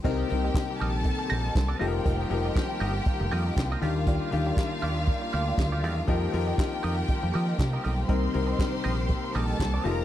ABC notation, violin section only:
X:1
M:4/4
L:1/8
Q:"Swing 16ths" 1/4=119
K:Cdor
V:1 name="Violin section"
[Gg]3 [Aa]4 [Gg]- | [Gg]6- [Gg] [Ff]- | [Ff]8 | [Gg]8 |
[cc']4- [cc'] [Aa]2 [Bb] |]